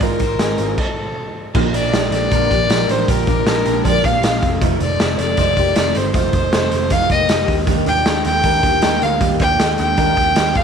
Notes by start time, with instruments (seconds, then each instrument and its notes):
Already playing: picked electric bass G#1
0.01 steel-string acoustic guitar G#3 D#4 F4 C5, clean electric guitar G#3 F4, violin A#4, kick, closed hi-hat
0.19 picked electric bass G#1, clean electric guitar D#4 C5, steel-string acoustic guitar D#4 F4 C5, kick, closed hi-hat
0.39 picked electric bass G#1, steel-string acoustic guitar G#3 D#4 F4 C5, clean electric guitar C4 G#4, snare, closed hi-hat
0.58 picked electric bass G#1, steel-string acoustic guitar D#4 F4 C5, closed hi-hat
0.78 violin A4, kick, crash
1.54 picked electric bass A#1, steel-string acoustic guitar A#2 D3 F3 A#3 D4 G4, clean electric guitar A#3 F4, kick, crash
1.73 picked electric bass A#1, steel-string acoustic guitar F3 A#3 D4 G4, clean electric guitar F4 D5, violin D5, closed hi-hat
1.92 picked electric bass A#1, steel-string acoustic guitar F3 A#3 D4 G4, clean electric guitar D4 A4, snare, closed hi-hat
2.11 picked electric bass A#1, steel-string acoustic guitar F3 A#3 D4 G4, violin D5, closed hi-hat
2.31 picked electric bass A#1, steel-string acoustic guitar A#2 D3 F3 A#3 D4 G4, clean electric guitar D4 A#4, kick, closed hi-hat
2.50 picked electric bass A#1, steel-string acoustic guitar F3 A#3 D4 G4, clean electric guitar A#3 G4, kick, closed hi-hat
2.69 picked electric bass A#1, steel-string acoustic guitar F3 A#3 D4 G4, clean electric guitar D4 A#4, snare, closed hi-hat
2.88 picked electric bass A1, steel-string acoustic guitar F3 A#3 D4 G4, violin C5, closed hi-hat
3.07 picked electric bass A#1, steel-string acoustic guitar A#2 D3 F3 A#3 D4 G4, clean electric guitar A#3 F4, violin A#4, kick, closed hi-hat
3.26 picked electric bass A#1, steel-string acoustic guitar F3 A#3 D4 G4, clean electric guitar F4 D5, kick, closed hi-hat
3.46 picked electric bass A#1, steel-string acoustic guitar F3 A#3 D4 G4, clean electric guitar D4 A5, snare, closed hi-hat
3.65 picked electric bass A#1, steel-string acoustic guitar F3 A#3 D4 G4, closed hi-hat
3.84 picked electric bass A#1, steel-string acoustic guitar A#2 D3 F3 A#3 D4 G4, clean electric guitar D4 A#4, violin D5, kick, closed hi-hat
4.03 picked electric bass A#1, steel-string acoustic guitar F3 A#3 D4 G4, clean electric guitar A#3 G4, violin F5, kick, closed hi-hat
4.22 picked electric bass A#1, steel-string acoustic guitar F3 A#3 D4 G4, clean electric guitar C4 A4, snare, closed hi-hat
4.41 picked electric bass F1, steel-string acoustic guitar D#3 A3 D#4, kick, closed hi-hat
4.61 steel-string acoustic guitar F2 C3 D#3 A3 D#4, clean electric guitar A3 F4, kick, closed hi-hat
4.80 picked electric bass F1, steel-string acoustic guitar D#3 A3 D#4, clean electric guitar D#4 C5, violin D5, closed hi-hat
4.99 picked electric bass F1, steel-string acoustic guitar C3 D#3 A3 D#4, clean electric guitar C4 A4, snare, closed hi-hat
5.18 picked electric bass F1, steel-string acoustic guitar D#3 A3 D#4, violin D5, closed hi-hat
5.37 picked electric bass F1, steel-string acoustic guitar F2 C3 D#3 A3 D#4, clean electric guitar D#4 C5, kick, closed hi-hat
5.56 picked electric bass F1, steel-string acoustic guitar D#3 A3 D#4, clean electric guitar A#3 G4, kick, closed hi-hat
5.75 picked electric bass F1, steel-string acoustic guitar C3 D#3 A3 D#4, clean electric guitar C4 A4, snare, closed hi-hat
5.93 picked electric bass G1, steel-string acoustic guitar D#3 A3 D#4, violin C5, closed hi-hat
6.13 picked electric bass F1, steel-string acoustic guitar F2 C3 D#3 A3 D#4, clean electric guitar A3 F4, violin C5, kick, closed hi-hat
6.33 picked electric bass F1, steel-string acoustic guitar D#3 A3 D#4, clean electric guitar D#4 C5, kick, closed hi-hat
6.52 picked electric bass F1, steel-string acoustic guitar C3 D#3 A3 D#4, clean electric guitar C4 A4, snare, closed hi-hat
6.71 picked electric bass F1, steel-string acoustic guitar D#3 A3 D#4, closed hi-hat
6.90 picked electric bass F1, steel-string acoustic guitar F2 C3 D#3 A3 D#4, clean electric guitar A3 F4, violin F5, kick, closed hi-hat
7.09 picked electric bass F1, steel-string acoustic guitar D#3 A3 D#4, clean electric guitar A#3 G4, violin D#5, kick, closed hi-hat
7.28 picked electric bass F1, steel-string acoustic guitar C3 D#3 A3 D#4, clean electric guitar A#3 G4, snare, closed hi-hat
7.47 picked electric bass D#2, steel-string acoustic guitar G3 A#3 D4, kick, open hi-hat
7.66 steel-string acoustic guitar D#3 G3 A#3 D4, clean electric guitar A#3 G4, kick, closed hi-hat
7.86 picked electric bass D#2, steel-string acoustic guitar G3 A#3 D4, clean electric guitar F4 D5, violin G5, closed hi-hat
8.05 picked electric bass D#2, steel-string acoustic guitar D#3 G3 A#3 D4, clean electric guitar D4 A4, snare, closed hi-hat
8.24 picked electric bass D#2, steel-string acoustic guitar G3 A#3 D4, violin G5, closed hi-hat
8.43 picked electric bass D#2, steel-string acoustic guitar D#3 G3 A#3 D4, clean electric guitar D4 A#4, kick, closed hi-hat
8.63 picked electric bass D#2, steel-string acoustic guitar G3 A#3 D4, clean electric guitar A#3 G4, kick, closed hi-hat
8.82 picked electric bass D#2, steel-string acoustic guitar D#3 G3 A#3 D4, clean electric guitar D4 A#4, snare, closed hi-hat
9.01 picked electric bass D2, steel-string acoustic guitar G3 A#3 D4, violin F5, closed hi-hat
9.20 picked electric bass D#2, steel-string acoustic guitar D#3 G3 A#3 D4, clean electric guitar A#3 G4, kick, closed hi-hat
9.39 picked electric bass D#2, steel-string acoustic guitar G3 A#3 D4, clean electric guitar F4 D5, violin G5, kick, closed hi-hat
9.58 picked electric bass D#2, steel-string acoustic guitar D#3 G3 A#3 D4, clean electric guitar D4 A4, snare, closed hi-hat
9.78 picked electric bass D#2, steel-string acoustic guitar G3 A#3 D4, violin G5, closed hi-hat
9.97 picked electric bass D#2, steel-string acoustic guitar D#3 G3 A#3 D4, clean electric guitar D4 A#4, kick, closed hi-hat
10.16 picked electric bass D#2, steel-string acoustic guitar G3 A#3 D4, clean electric guitar A#3 G4, kick, closed hi-hat
10.35 picked electric bass D#2, steel-string acoustic guitar D#3 G3 A#3 D4, clean electric guitar C4 A4, snare, closed hi-hat
10.55 picked electric bass F2, steel-string acoustic guitar D#3 A3 D#4, violin F5, kick, closed hi-hat